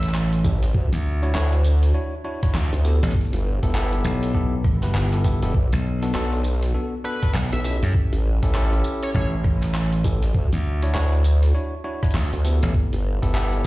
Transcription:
Already playing: A1 E5
0.03 closed hi-hat
0.09 clap
0.14 clap
0.33 closed hi-hat
0.44 A1 C#4 E4 G4 A4, kick, tambourine
0.63 closed hi-hat
0.74 D2, kick
0.93 D2, closed hi-hat
1.23 D4 E4 F#4 C#5, closed hi-hat
1.34 D2 D4 E4 F#4 C#5, cross-stick, clap
1.53 closed hi-hat
1.64 tambourine
1.83 closed hi-hat
1.94 D4 E4 F#4 C#5
2.24 D4 E4 F#4 C#5
2.43 D4 E4 F#4 C#5, kick, cross-stick, closed hi-hat
2.54 D2, clap
2.73 D2, closed hi-hat
2.84 B3 E4 G4 A4, tambourine
3.03 A1, closed hi-hat
3.05 closed hi-hat
3.11 kick, closed hi-hat
3.15 closed hi-hat
3.21 closed hi-hat
3.25 closed hi-hat
3.33 G1, closed hi-hat
3.63 G1 B3 E4 G4 A4, kick, closed hi-hat
3.75 B3 E4 G4 A4, cross-stick, clap
3.93 closed hi-hat
4.04 B1, tambourine
4.23 closed hi-hat
4.34 B3 E4 G4 A4, kick
4.64 kick, cross-stick
4.83 B3 E4 G4 B4, clap, closed hi-hat
4.94 G1, clap
5.13 B3 E4 G4 A4, closed hi-hat
5.24 B3 E4 G4 A4, kick, tambourine
5.43 E1 B3 E4 G4 A4, closed hi-hat
5.54 B1, kick
5.73 B1, closed hi-hat
6.03 B3 D4 F#4 A4, closed hi-hat
6.14 B1 B3 D4 F#4 A4, cross-stick, clap
6.33 closed hi-hat
6.44 tambourine
6.63 closed hi-hat
6.74 B3 D4 F#4 A4
7.04 B3 D4 F#4 A4 B4
7.23 B3 D4 F#4 A4, kick, cross-stick, closed hi-hat
7.34 B1, clap
7.53 B1 E5, closed hi-hat
7.64 C#4 E4 G4 A4 E5, tambourine
7.83 F#2, closed hi-hat
7.94 kick
8.13 A1, closed hi-hat
8.43 A1 C#4 E4 G4 A4, kick, closed hi-hat
8.54 C#4 E4 G4 A4, cross-stick, clap
8.73 closed hi-hat
8.84 tambourine
9.03 C#5, closed hi-hat
9.14 A1 C#4 E4 G4 A4 C#5, kick
9.44 kick, cross-stick
9.63 clap, closed hi-hat
9.74 clap
9.93 closed hi-hat
10.04 A1 C#4 E4 G4 A4, kick, tambourine
10.23 closed hi-hat
10.35 D2, kick
10.53 D2, closed hi-hat
10.82 D4 E4 F#4 C#5, closed hi-hat
10.94 D2 D4 E4 F#4 C#5, cross-stick, clap
11.13 closed hi-hat
11.24 tambourine
11.43 closed hi-hat
11.55 D4 E4 F#4 C#5
11.84 D4 E4 F#4 C#5
12.03 D4 E4 F#4 C#5, kick, cross-stick, closed hi-hat
12.04 closed hi-hat
12.11 D2, clap, closed hi-hat
12.33 D2, closed hi-hat
12.45 B3 E4 G4 A4, tambourine
12.63 A1, closed hi-hat
12.74 kick
12.93 G1, closed hi-hat
13.22 G1 B3 E4 G4 A4, kick, closed hi-hat
13.34 B3 E4 G4 A4, cross-stick, clap
13.53 closed hi-hat

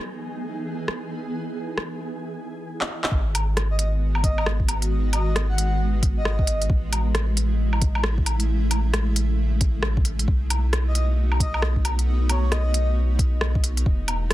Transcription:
Already playing: E3 B3 D#4 G#4 G#5
0.88 cross-stick
1.34 E4
1.78 cross-stick
2.81 clap
3.04 clap
3.12 G#1 D#3 G#3 B3 F#4, kick
3.35 closed hi-hat, low woodblock
3.57 cross-stick, closed hi-hat
3.71 D#5
3.79 D#5, closed hi-hat
4.15 low woodblock
4.23 D#5, kick, closed hi-hat
4.38 low woodblock
4.46 cross-stick
4.60 kick
4.69 closed hi-hat, low woodblock
4.82 closed hi-hat
5.13 D#5, closed hi-hat, low woodblock
5.36 cross-stick, closed hi-hat
5.49 F#5
5.58 closed hi-hat
6.03 kick, closed hi-hat
6.17 D#5
6.25 cross-stick
6.39 kick
6.47 closed hi-hat
6.62 closed hi-hat
6.69 A1 C#3 A3 E4, kick
6.93 closed hi-hat, low woodblock
7.15 cross-stick, closed hi-hat
7.37 closed hi-hat
7.73 low woodblock
7.82 kick, closed hi-hat
7.95 low woodblock
8.04 cross-stick
8.18 kick
8.26 closed hi-hat, low woodblock
8.40 closed hi-hat
8.71 closed hi-hat, low woodblock
8.94 cross-stick, closed hi-hat
9.16 closed hi-hat
9.61 kick, closed hi-hat
9.83 cross-stick
9.97 kick
10.05 closed hi-hat
10.19 closed hi-hat
10.28 B1 B3 D#4 F#4, kick
10.50 closed hi-hat, low woodblock
10.73 cross-stick, closed hi-hat
10.88 D#5
10.95 D#5, closed hi-hat
11.32 low woodblock
11.40 D#5, kick, closed hi-hat
11.54 low woodblock
11.62 cross-stick
11.76 kick
11.85 closed hi-hat, low woodblock
11.99 closed hi-hat
12.29 C#5, closed hi-hat, low woodblock
12.52 D#5, cross-stick, closed hi-hat
12.74 closed hi-hat
13.19 kick, closed hi-hat
13.41 cross-stick
13.55 kick
13.64 closed hi-hat
13.77 closed hi-hat
13.86 E1 G#3 B3 E4, kick
14.08 closed hi-hat, low woodblock
14.31 cross-stick, closed hi-hat

